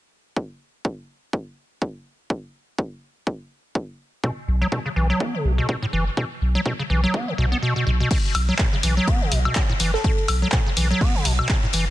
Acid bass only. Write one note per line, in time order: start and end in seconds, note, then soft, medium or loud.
4.24 4.31 B2 medium
4.62 4.67 F#3 loud
4.72 4.80 B2 medium
4.86 4.89 C#3 medium
4.96 5.08 E3 medium
5.10 5.22 F#3 loud
5.20 5.36 B3 medium
5.34 5.46 C#3 loud
5.45 5.52 B2 medium
5.58 5.67 B2 medium
5.82 5.86 A2 loud
5.93 6.04 E3 medium
6.17 6.25 B2 medium
6.55 6.61 F#3 loud
6.66 6.73 B2 medium
6.79 6.83 C#3 medium
6.90 7.01 E3 medium
7.04 7.16 F#3 loud
7.14 7.29 B3 medium
7.28 7.33 C#3 loud
7.38 7.46 B2 loud
7.52 7.58 B3 medium
7.62 7.74 B2 loud
7.76 7.85 B2 medium
7.87 7.91 B2 medium
8.00 8.09 B2 loud
8.49 8.54 F#3 loud
8.59 8.67 B2 medium
8.73 8.76 C#3 medium
8.84 8.95 E3 medium
8.97 9.09 F#3 loud
9.08 9.23 B3 medium
9.21 9.33 C#3 loud
9.32 9.39 B2 medium
9.45 9.54 B2 medium
9.70 9.73 A2 loud
9.80 9.91 E3 medium
10.04 10.12 B2 medium
10.42 10.48 F#3 loud
10.53 10.60 B2 medium
10.66 10.70 C#3 medium
10.77 10.88 E3 medium
10.91 11.03 F#3 loud
11.01 11.16 B3 medium
11.15 11.27 C#3 loud
11.25 11.33 B2 medium
11.39 11.48 B2 medium
11.49 11.57 B2 medium
11.63 11.67 A2 loud
11.74 11.85 E3 medium